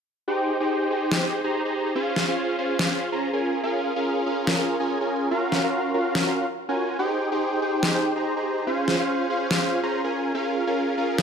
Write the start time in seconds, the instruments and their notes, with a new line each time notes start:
0.28 supersaw synth D#4 G4 G#4 C5 G5
0.60 supersaw synth D#4 G4 G#4 C5 G5
0.91 supersaw synth D#4 G4 G#4 C5 G5
1.12 snare
1.23 supersaw synth D#4 G4 G#4 C5 G5
1.44 supersaw synth D#4 G4 G#4 C5 A#5
1.65 supersaw synth D#4 G4 G#4 C5 A#5
1.95 supersaw synth C#4 F4 G#4 C5 F5
2.16 snare
2.28 supersaw synth C#4 F4 G#4 C5 F5
2.59 supersaw synth C#4 F4 G#4 C5 F5
2.79 snare
2.91 supersaw synth C#4 F4 G#4 C5 F5
3.12 supersaw synth C#4 F4 G#4 C5 A#5
3.33 supersaw synth C#4 F4 G#4 A#4 G#5
3.63 supersaw synth C#4 F4 G#4 A#4 F5
3.96 supersaw synth C#4 F4 G#4 A#4 F5
4.26 supersaw synth C#4 F4 G#4 A#4 F5
4.47 snare
4.59 supersaw synth C#4 F4 G#4 A#4 F5
4.80 supersaw synth C#4 F4 G#4 A#4 G#5
5.01 supersaw synth C#4 F4 G#4 A#4 G#5
5.31 supersaw synth C#4 F4 F#4 A#4 F5
5.52 snare
5.64 supersaw synth C#4 F4 F#4 A#4 F5
5.94 supersaw synth C#4 F4 F#4 A#4 F5
6.15 snare
6.27 supersaw synth C#4 F4 F#4 A#4 F5
6.69 supersaw synth C#4 F4 F#4 A#4 G#5
6.99 supersaw synth D#4 G4 G#4 C5 G5
7.32 supersaw synth D#4 G4 G#4 C5 G5
7.62 supersaw synth D#4 G4 G#4 C5 G5
7.83 snare
7.95 supersaw synth D#4 G4 G#4 C5 G5
8.16 supersaw synth D#4 G4 G#4 C5 A#5
8.37 supersaw synth D#4 G4 G#4 C5 A#5
8.67 supersaw synth C#4 F4 G#4 C5 F5
8.88 snare
9.00 supersaw synth C#4 F4 G#4 C5 F5
9.30 supersaw synth C#4 F4 G#4 C5 F5
9.51 snare
9.62 supersaw synth C#4 F4 G#4 C5 F5
9.83 supersaw synth C#4 F4 G#4 C5 A#5
10.04 supersaw synth C#4 F4 G#4 A#4 G#5
10.35 supersaw synth C#4 F4 G#4 A#4 F5
10.67 supersaw synth C#4 F4 G#4 A#4 F5
10.98 supersaw synth C#4 F4 G#4 A#4 F5
11.18 snare